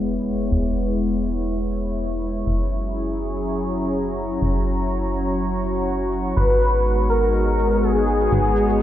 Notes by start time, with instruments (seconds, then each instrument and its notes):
Already playing: analog synth bass E1, analog synth pad G#3 B3 E4, synth texture C#5 C#6, sub drop
0.03 shaker
0.15 shaker
0.27 shaker
0.40 shaker
0.51 analog synth bass E1, shaker
0.64 shaker
0.76 shaker
0.89 shaker
1.00 shaker
1.13 shaker
1.25 shaker
1.37 shaker
1.49 shaker
1.62 shaker
1.73 shaker
1.86 shaker
1.98 shaker
2.11 shaker
2.22 shaker
2.35 shaker
2.46 analog synth bass F#1, analog synth pad F#3 C#4 G#4 A#5, shaker
2.59 shaker
2.71 shaker
2.84 shaker
2.95 shaker
3.08 shaker
3.20 shaker
3.33 shaker
3.44 shaker
3.57 shaker
3.68 shaker
3.81 shaker
3.93 shaker
4.06 shaker
4.17 shaker
4.30 shaker
4.41 analog synth bass F#1, analog synth pad F#4, shaker
4.54 shaker
4.66 shaker
4.79 shaker
4.90 shaker
5.03 shaker
5.15 shaker
5.28 shaker
5.39 shaker
5.52 shaker
5.64 shaker
5.76 shaker
5.88 shaker
6.01 shaker
6.12 shaker
6.25 shaker
6.36 analog synth bass G#1, analog synth pad G#3 B3 D#4, analog synth lead B4, shaker
6.50 shaker
6.61 shaker
6.74 shaker
6.86 shaker
6.98 shaker
7.10 analog synth lead A#4, shaker
7.23 shaker
7.34 shaker
7.47 shaker
7.59 shaker
7.71 shaker
7.83 analog synth lead G#4, shaker
7.96 shaker
8.07 shaker
8.20 shaker
8.32 analog synth bass G#1, analog synth pad G#4, shaker
8.45 shaker
8.56 shaker
8.69 shaker